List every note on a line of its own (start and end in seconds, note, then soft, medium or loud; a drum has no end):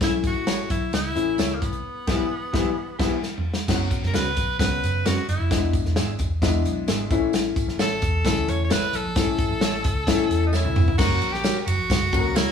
0.01 0.36 B1 loud
0.01 0.74 E3 medium
0.01 0.74 A3 medium
0.01 0.74 C#4 medium
0.01 0.74 E4 medium
0.01 0.13 E4 loud
0.01 kick medium
0.01 snare medium
0.01 closed hi-hat medium
0.01 tambourine medium
0.24 0.68 F#4 loud
0.24 kick medium
0.24 closed hi-hat medium
0.24 tambourine medium
0.36 0.65 A1 medium
0.47 0.60 E4 medium
0.47 0.60 A4 medium
0.47 0.61 C#5 medium
0.47 snare loud
0.47 closed hi-hat medium
0.47 tambourine medium
0.70 0.90 B1 medium
0.70 0.92 E4 medium
0.70 kick medium
0.70 closed hi-hat medium
0.70 tambourine medium
0.93 1.12 C#2 loud
0.93 1.56 E4 loud
0.93 snare loud
0.93 closed hi-hat medium
0.93 tambourine medium
1.15 1.35 A1 medium
1.15 1.70 E3 medium
1.15 1.70 A3 medium
1.15 1.70 C#4 medium
1.15 1.70 E4 medium
1.15 closed hi-hat medium
1.15 tambourine soft
1.38 1.58 C#2 medium
1.38 1.52 E4 medium
1.38 1.52 A4 medium
1.38 1.52 C#5 medium
1.38 snare loud
1.38 closed hi-hat medium
1.38 tambourine loud
1.55 1.62 A#3 medium
1.61 1.81 C2 medium
1.61 3.22 B3 medium
1.61 kick medium
1.61 closed hi-hat medium
1.61 tambourine soft
1.73 closed hi-hat soft
2.07 2.23 B1 medium
2.07 2.23 E3 medium
2.07 2.23 G3 medium
2.07 2.23 B3 medium
2.07 2.23 G4 loud
2.07 2.23 B4 loud
2.07 2.23 E5 loud
2.07 kick medium
2.07 snare loud
2.07 crash medium
2.14 2.27 E4 medium
2.53 2.69 B1 loud
2.53 2.69 E3 loud
2.53 2.69 G3 medium
2.53 2.69 B3 medium
2.53 2.69 E4 medium
2.53 2.69 G4 loud
2.53 2.69 B4 medium
2.53 2.69 E5 medium
2.53 kick medium
2.53 snare loud
2.99 3.15 B1 medium
2.99 3.15 E3 medium
2.99 3.15 G3 medium
2.99 3.15 B3 medium
2.99 3.15 E4 medium
2.99 3.14 G4 loud
2.99 3.15 B4 medium
2.99 3.15 E5 loud
2.99 kick loud
2.99 snare loud
2.99 crash medium
3.23 snare soft
3.38 mid tom medium
3.54 snare medium
3.68 3.88 F#1 medium
3.68 4.41 F#3 medium
3.68 4.41 B3 medium
3.68 4.41 C#4 medium
3.68 3.74 E4 medium
3.68 kick medium
3.68 snare loud
3.68 crash medium
3.68 tambourine medium
3.75 4.44 F#4 medium
3.91 kick medium
3.91 closed hi-hat medium
3.91 tambourine medium
4.03 4.12 F#1 medium
4.03 4.16 A#4 medium
4.03 snare soft
4.13 4.34 C#2 medium
4.13 4.27 C#4 medium
4.13 4.27 F#4 medium
4.13 4.59 B4 loud
4.13 4.27 B4 medium
4.13 snare loud
4.13 closed hi-hat medium
4.13 tambourine medium
4.37 4.56 B1 medium
4.37 kick medium
4.37 closed hi-hat medium
4.37 tambourine medium
4.59 4.79 C#2 loud
4.59 5.32 F#3 medium
4.59 5.32 B3 medium
4.59 5.32 C#4 medium
4.59 5.32 F#4 medium
4.59 5.08 B4 medium
4.59 kick medium
4.59 snare loud
4.59 closed hi-hat medium
4.59 tambourine medium
4.83 5.02 F#1 medium
4.83 closed hi-hat medium
4.83 tambourine soft
5.05 5.15 F#1 medium
5.05 5.18 C#4 medium
5.05 5.19 F#4 medium
5.05 5.28 F#4 medium
5.05 5.19 B4 medium
5.05 snare loud
5.05 closed hi-hat medium
5.05 tambourine medium
5.28 5.38 F#1 medium
5.28 5.71 E4 medium
5.28 closed hi-hat medium
5.28 tambourine soft
5.40 5.49 F1 medium
5.51 5.70 E1 medium
5.51 6.23 G#3 medium
5.51 6.23 B3 medium
5.51 6.23 D4 medium
5.51 6.24 E4 medium
5.51 kick loud
5.51 snare loud
5.51 closed hi-hat medium
5.51 tambourine medium
5.73 kick medium
5.73 closed hi-hat medium
5.73 tambourine medium
5.85 5.95 E1 medium
5.85 snare soft
5.96 6.10 G#4 medium
5.96 6.10 D5 medium
5.96 6.10 E5 medium
5.96 snare loud
5.96 closed hi-hat medium
5.96 tambourine medium
6.19 6.39 E1 medium
6.19 kick medium
6.19 closed hi-hat medium
6.19 tambourine medium
6.42 6.62 E2 loud
6.42 7.11 G#3 medium
6.42 7.11 B3 medium
6.42 7.11 D4 medium
6.42 7.10 E4 loud
6.42 kick medium
6.42 snare loud
6.42 closed hi-hat medium
6.42 tambourine medium
6.65 6.85 B1 medium
6.65 closed hi-hat medium
6.65 tambourine soft
6.88 7.08 G#1 medium
6.88 7.01 G#4 medium
6.88 7.01 D5 medium
6.88 7.01 E5 medium
6.88 snare loud
6.88 closed hi-hat loud
6.88 tambourine medium
7.11 7.50 A1 loud
7.11 7.84 E3 medium
7.11 7.84 A3 medium
7.11 7.84 C#4 medium
7.11 7.84 E4 loud
7.11 kick loud
7.11 closed hi-hat medium
7.11 tambourine soft
7.33 snare loud
7.33 closed hi-hat medium
7.33 tambourine medium
7.56 kick medium
7.56 closed hi-hat medium
7.56 tambourine medium
7.68 7.78 A1 loud
7.68 snare soft
7.79 7.99 A1 loud
7.79 7.92 A4 medium
7.79 8.23 A4 loud
7.79 7.93 C#5 medium
7.79 7.93 E5 medium
7.79 snare loud
7.79 closed hi-hat medium
7.79 tambourine loud
8.02 8.22 E2 medium
8.02 kick medium
8.02 closed hi-hat medium
8.02 tambourine medium
8.24 8.44 D2 loud
8.24 8.97 E3 medium
8.24 8.97 A3 medium
8.24 8.98 C#4 medium
8.24 8.97 E4 medium
8.24 8.51 A4 loud
8.24 kick loud
8.24 snare loud
8.24 closed hi-hat loud
8.24 tambourine medium
8.48 8.67 E2 medium
8.48 8.64 C#5 medium
8.48 closed hi-hat medium
8.48 tambourine soft
8.64 8.74 C#5 medium
8.70 8.81 A1 medium
8.70 8.84 A4 medium
8.70 8.97 B4 loud
8.70 8.84 C#5 medium
8.70 8.84 E5 medium
8.70 snare loud
8.70 closed hi-hat loud
8.70 tambourine loud
8.93 9.03 B1 medium
8.93 10.46 A4 medium
8.93 closed hi-hat medium
8.93 tambourine soft
9.04 9.14 A#1 medium
9.16 9.36 A1 loud
9.16 9.88 E3 medium
9.16 9.88 A3 medium
9.16 9.88 C#4 medium
9.16 9.88 E4 medium
9.16 kick loud
9.16 snare medium
9.16 closed hi-hat medium
9.16 tambourine medium
9.39 kick loud
9.39 closed hi-hat medium
9.39 tambourine medium
9.51 9.60 A1 loud
9.61 9.81 A1 loud
9.61 9.75 A4 medium
9.61 9.75 C#5 medium
9.61 9.75 E5 medium
9.61 snare loud
9.61 closed hi-hat medium
9.61 tambourine medium
9.84 10.04 C#2 loud
9.84 kick loud
9.84 closed hi-hat medium
9.84 tambourine medium
10.07 10.27 A2 loud
10.07 10.79 E3 medium
10.07 10.80 A3 medium
10.07 10.79 C#4 medium
10.07 10.80 E4 loud
10.07 kick medium
10.07 snare loud
10.07 closed hi-hat loud
10.07 tambourine medium
10.30 10.59 E2 medium
10.30 closed hi-hat medium
10.30 tambourine soft
10.47 10.55 D#4 medium
10.53 10.98 E4 medium
10.53 10.66 A4 medium
10.53 10.66 C#5 medium
10.53 10.67 E5 medium
10.53 snare medium
10.53 tambourine loud
10.64 10.74 C#2 medium
10.64 high tom medium
10.75 10.95 G1 loud
10.75 mid tom loud
10.75 tambourine medium
10.88 floor tom medium
10.98 11.18 F#1 loud
10.98 11.70 F#3 medium
10.98 11.70 A#3 medium
10.98 11.71 C#4 medium
10.98 11.34 F#4 loud
10.98 11.71 F#4 medium
10.98 11.71 A#4 medium
10.98 kick loud
10.98 snare loud
10.98 crash loud
10.98 tambourine loud
11.21 11.50 A#1 medium
11.21 ride soft
11.21 tambourine medium
11.33 11.59 G4 loud
11.33 snare soft
11.44 11.57 F#4 medium
11.44 11.58 A#4 medium
11.44 11.58 C#5 medium
11.44 snare loud
11.44 ride medium
11.44 tambourine medium
11.60 11.68 G4 medium
11.66 11.77 F#1 medium
11.66 12.38 F#4 loud
11.66 ride medium
11.66 tambourine medium
11.78 11.88 A#1 medium
11.90 12.19 F#1 medium
11.90 kick medium
11.90 snare loud
11.90 ride medium
11.90 tambourine loud
12.12 12.52 F#3 medium
12.12 12.52 A#3 medium
12.12 12.52 C#4 medium
12.12 12.52 F#4 medium
12.12 12.18 A4 medium
12.12 kick loud
12.12 ride medium
12.12 tambourine medium
12.19 12.52 A#4 medium
12.24 12.44 C#2 medium
12.34 12.52 E4 medium
12.34 12.48 F#4 medium
12.34 12.49 A#4 medium
12.34 12.49 C#5 loud
12.34 snare loud
12.34 ride medium
12.34 tambourine loud